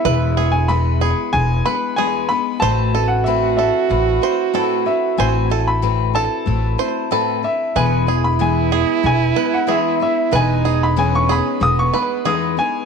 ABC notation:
X:1
M:4/4
L:1/16
Q:1/4=93
K:E
V:1 name="Upright piano"
e3 g b4 g2 b2 g2 b2 | a3 f e2 e6 z2 e2 | g3 b3 a8 e2 | g3 b g4 g3 f e2 e2 |
g3 b g c' b2 d' c' b2 d'2 g2 |]
V:2 name="Five-string banjo"
B2 G4 G4 B2 G4 | =c2 A4 A4 c2 A4 | =c2 A4 A4 c2 A4 | B2 G4 G4 B2 G4 |
B2 G4 G4 B2 G4 |]
V:3 name="French horn"
E12- E2 z2 | F16- | F12- F2 z2 | E16 |
D4 C4 B,6 z2 |]
V:4 name="Steel-string acoustic guitar"
[E,,E,G,B,B]2 [G,B,B]2 [E,,E,G,B,B]2 [G,B,B]2 [G,B,B]2 [G,B,B]2 [E,,E,G,B,B]2 [G,B,DB]2 | [A,,A,=CEB]2 [CEB]2 [A,,A,CEB]2 [CEB]2 [A,CEB]2 [CEB]2 [A,,A,CEB]2 [CEB]2 | [A,,A,=CEB]2 [CEB]2 [A,,A,CEB]2 [CEB]2 [A,CEB]2 [CEB]2 [A,,A,CEB]2 [CEB]2 | [E,,E,G,B,B]2 [G,B,B]2 [E,,E,G,B,B]2 [G,B,B]2 [G,B,B]2 [G,B,B]2 [E,,E,G,B,B]2 [G,B,B]2 |
[E,,E,G,B,DB]2 [G,B,DB]2 [E,,E,G,B,DB]2 [G,B,DB]2 [G,B,DB]2 [G,B,DB]2 [E,,E,G,B,DB]2 [G,B,DB]2 |]
V:5 name="Upright bass" clef=bass
E,,,8 E,,,2 z6 | A,,,8 A,,,2 z6 | A,,,8 A,,,2 z6 | E,,,8 E,,,2 z6 |
E,,,8 E,,,2 z6 |]